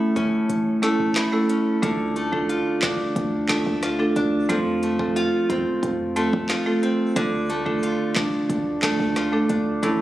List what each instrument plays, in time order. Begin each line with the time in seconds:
Already playing: nylon-string guitar A2 A3 E4
0.16 808-style bass G1, nylon-string guitar C#4, kick, closed hi-hat
0.49 808-style bass A1, closed hi-hat
0.82 marimba A3 C#4 E4 A4, nylon-string guitar A3, snare, closed hi-hat
1.00 808-style bass A1
1.16 nylon-string guitar E4, cross-stick, snare, clap, closed hi-hat
1.32 marimba A3 C#4 E4 A4
1.49 nylon-string guitar C#4, closed hi-hat
1.82 808-style bass D2, nylon-string guitar D3, marimba A3 D4 F4 A4, kick, closed hi-hat
2.16 nylon-string guitar A3, closed hi-hat
2.33 marimba A3 D4 F4 A4, kick
2.49 nylon-string guitar F4, closed hi-hat
2.82 808-style bass C2, nylon-string guitar D4, kick, snare, clap, closed hi-hat
3.16 808-style bass D2, kick, closed hi-hat
3.49 marimba A3 D4 F4 A4, nylon-string guitar A3, kick, snare, clap, closed hi-hat
3.66 808-style bass D2
3.83 nylon-string guitar F4, cross-stick, snare, closed hi-hat
3.99 marimba A3 D4 F4 A4
4.16 808-style bass D2, nylon-string guitar D4, closed hi-hat
4.49 808-style bass F2, nylon-string guitar F3, marimba A3 C4 F4 A4, kick, closed hi-hat
4.83 nylon-string guitar A3, closed hi-hat
4.99 marimba A3 C4 F4 A4, kick
5.16 nylon-string guitar F4, closed hi-hat
5.50 808-style bass E2, nylon-string guitar C4, kick, closed hi-hat
5.83 808-style bass F2, kick, closed hi-hat
6.16 marimba A3 C4 F4 A4, nylon-string guitar A3, closed hi-hat
6.33 808-style bass F2, kick
6.49 nylon-string guitar F4, cross-stick, snare, clap, closed hi-hat
6.66 marimba A3 C4 F4 A4
6.83 nylon-string guitar C4, closed hi-hat
7.16 808-style bass D2, nylon-string guitar D3, marimba A3 D4 F4 A4, kick, closed hi-hat
7.50 nylon-string guitar A3, closed hi-hat
7.66 marimba A3 D4 F4 A4, kick
7.83 nylon-string guitar F4, closed hi-hat
8.16 808-style bass C2, nylon-string guitar D4, kick, snare, clap, closed hi-hat
8.49 808-style bass D2, kick, closed hi-hat
8.83 marimba A3 D4 F4 A4, nylon-string guitar A3, kick, snare, clap, closed hi-hat
8.99 808-style bass D2
9.16 nylon-string guitar F4, cross-stick, snare, closed hi-hat
9.32 marimba A3 D4 F4 A4
9.49 808-style bass D2, nylon-string guitar D4, closed hi-hat
9.83 808-style bass A1, nylon-string guitar A2, marimba A3 C#4 E4 A4, kick, closed hi-hat